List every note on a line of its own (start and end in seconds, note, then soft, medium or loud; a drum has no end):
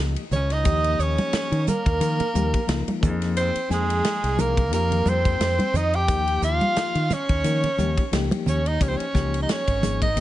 0.00 0.15 C#2 medium
0.00 0.22 F3 medium
0.00 0.22 A#3 medium
0.00 0.22 D#4 medium
0.00 0.23 G4 medium
0.16 ride soft
0.31 0.65 C#2 medium
0.31 0.54 C#5 medium
0.31 hi-hat pedal medium
0.31 low conga medium
0.35 0.55 C#4 medium
0.50 1.04 D#4 medium
0.50 1.02 D#5 medium
0.50 snare soft
0.50 ride soft
0.64 0.96 D#2 loud
0.64 1.57 F3 medium
0.64 1.58 A#3 medium
0.64 1.58 D#4 medium
0.64 1.58 G4 medium
0.64 kick loud
0.64 hi-hat pedal medium
0.64 ride medium
0.84 ride soft
0.99 1.16 D#2 medium
0.99 1.68 C#4 medium
0.99 1.67 C#5 medium
0.99 hi-hat pedal medium
1.18 ride medium
1.18 high conga medium
1.33 muted fingered electric bass stroke soft
1.33 snare loud
1.33 hi-hat pedal medium
1.33 ride medium
1.52 1.65 D#3 medium
1.52 ride soft
1.67 3.00 A#3 medium
1.67 2.99 A#4 medium
1.67 muted fingered electric bass stroke soft
1.67 hi-hat pedal medium
1.67 high conga medium
1.67 low conga medium
1.86 1.99 D#2 medium
1.86 kick medium
1.86 ride medium
2.00 2.17 D#3 medium
2.00 2.25 F3 medium
2.00 2.25 A#3 medium
2.00 2.26 D#4 medium
2.00 2.26 A#4 medium
2.00 hi-hat pedal medium
2.00 ride medium
2.20 muted fingered electric bass stroke soft
2.20 ride medium
2.20 low conga medium
2.34 2.52 D#2 medium
2.34 2.59 F3 medium
2.34 2.59 A#3 medium
2.34 2.59 D#4 medium
2.34 2.60 G4 medium
2.34 hi-hat pedal medium
2.34 high conga medium
2.54 kick medium
2.54 ride medium
2.67 2.85 C#2 medium
2.67 3.00 F3 medium
2.67 3.00 A#3 medium
2.67 3.01 D#4 medium
2.67 3.03 F4 medium
2.67 snare loud
2.67 hi-hat pedal medium
2.67 ride medium
2.88 ride medium
2.88 high conga medium
3.01 3.50 F2 medium
3.01 3.58 F3 medium
3.01 3.58 A#3 medium
3.01 3.59 D#4 medium
3.01 3.59 G#4 medium
3.01 kick medium
3.01 hi-hat pedal medium
3.01 low conga medium
3.22 snare soft
3.22 ride medium
3.37 3.70 C4 medium
3.37 3.69 C5 medium
3.37 hi-hat pedal medium
3.37 ride medium
3.55 muted fingered electric bass stroke soft
3.55 ride medium
3.69 4.00 F2 medium
3.69 4.17 F3 medium
3.69 4.43 G#3 medium
3.69 4.17 A#3 medium
3.69 4.18 D#4 medium
3.69 4.18 G#4 medium
3.69 4.41 G#4 medium
3.69 snare soft
3.69 hi-hat pedal medium
3.90 ride medium
4.04 snare medium
4.04 hi-hat pedal medium
4.04 ride medium
4.23 4.72 C2 medium
4.23 ride medium
4.37 4.62 F3 medium
4.37 4.62 A#3 medium
4.37 4.62 D#4 medium
4.37 4.63 G#4 medium
4.37 4.73 A#4 medium
4.37 hi-hat pedal medium
4.37 high conga medium
4.37 low conga medium
4.42 4.74 A#3 medium
4.57 kick medium
4.57 ride medium
4.71 5.02 F2 medium
4.71 5.65 F3 medium
4.71 5.65 A#3 medium
4.71 5.10 A#3 medium
4.71 5.65 D#4 medium
4.71 5.65 G4 medium
4.71 5.10 A#4 medium
4.71 hi-hat pedal medium
4.71 ride medium
4.91 ride medium
4.91 low conga medium
5.06 5.36 F2 medium
5.06 5.79 C4 medium
5.06 5.78 C5 medium
5.06 hi-hat pedal medium
5.06 high conga medium
5.25 kick medium
5.25 ride medium
5.40 5.57 F2 medium
5.40 snare loud
5.40 hi-hat pedal medium
5.40 ride medium
5.59 ride medium
5.59 high conga medium
5.73 6.09 F2 medium
5.73 5.97 D#4 medium
5.73 5.96 D#5 medium
5.73 hi-hat pedal medium
5.73 low conga medium
5.93 6.43 G4 medium
5.93 6.43 G5 medium
5.93 ride soft
6.07 6.39 D#2 medium
6.07 7.01 F3 medium
6.07 7.01 A#3 medium
6.07 7.01 D#4 medium
6.07 7.02 G4 medium
6.07 kick loud
6.07 hi-hat pedal medium
6.07 ride medium
6.28 ride soft
6.42 6.59 D#2 medium
6.42 7.15 F4 medium
6.42 7.14 F5 medium
6.42 hi-hat pedal medium
6.61 ride soft
6.61 high conga medium
6.76 muted fingered electric bass stroke soft
6.76 snare loud
6.76 hi-hat pedal medium
6.76 ride medium
6.95 7.08 D#3 medium
6.95 ride soft
7.10 8.22 C#4 medium
7.10 8.21 C#5 medium
7.10 muted fingered electric bass stroke soft
7.10 hi-hat pedal medium
7.10 high conga medium
7.10 low conga medium
7.29 7.43 D#2 medium
7.29 kick medium
7.29 ride medium
7.43 7.61 D#3 medium
7.43 7.68 F3 medium
7.43 7.68 A#3 medium
7.43 7.69 D#4 medium
7.43 7.69 A#4 medium
7.43 hi-hat pedal medium
7.43 ride medium
7.63 muted fingered electric bass stroke soft
7.63 ride medium
7.63 low conga medium
7.77 7.95 D#2 medium
7.77 8.02 F3 medium
7.77 8.02 A#3 medium
7.77 8.03 D#4 medium
7.77 8.03 G4 medium
7.77 hi-hat pedal medium
7.77 high conga medium
7.97 kick medium
7.97 ride medium
8.12 8.29 C#2 medium
8.12 8.59 F3 medium
8.12 8.60 A#3 medium
8.12 8.60 D#4 medium
8.12 8.60 G4 medium
8.12 snare loud
8.12 hi-hat pedal medium
8.12 ride medium
8.31 ride medium
8.31 high conga medium
8.46 8.77 D#2 medium
8.46 8.69 C#4 medium
8.46 8.69 C#5 medium
8.46 hi-hat pedal medium
8.46 low conga medium
8.66 8.84 D#4 medium
8.66 8.83 D#5 medium
8.66 ride medium
8.80 8.97 C#2 medium
8.80 9.04 F3 medium
8.80 9.05 A#3 medium
8.80 8.90 C#4 medium
8.80 9.05 D#4 medium
8.80 9.05 G4 medium
8.80 8.89 C#5 medium
8.80 kick loud
8.80 hi-hat pedal medium
8.80 ride medium
8.88 8.99 C4 medium
8.88 8.98 C5 medium
8.97 9.42 C#4 medium
8.97 9.42 C#5 medium
8.97 ride medium
9.13 9.45 C#2 medium
9.13 9.61 F3 medium
9.13 9.61 A#3 medium
9.13 9.62 D#4 medium
9.13 9.62 G4 medium
9.13 kick medium
9.13 snare soft
9.13 hi-hat pedal medium
9.34 ride medium
9.42 9.51 D#4 soft
9.42 9.53 D#5 medium
9.49 10.01 C#4 medium
9.49 10.02 C#5 medium
9.49 snare loud
9.49 hi-hat pedal medium
9.49 ride medium
9.68 10.18 G#1 medium
9.68 kick medium
9.68 ride medium
9.82 10.06 F3 medium
9.82 10.07 A#3 medium
9.82 10.07 D#4 medium
9.82 10.07 G#4 medium
9.82 snare soft
9.82 hi-hat pedal medium
9.82 high conga medium
9.82 low conga medium
10.02 10.20 D#4 medium
10.02 10.20 D#5 medium
10.02 kick medium
10.02 ride medium
10.16 10.20 D#2 medium
10.16 10.20 F3 medium
10.16 10.20 A#3 medium
10.16 hi-hat pedal medium
10.16 ride medium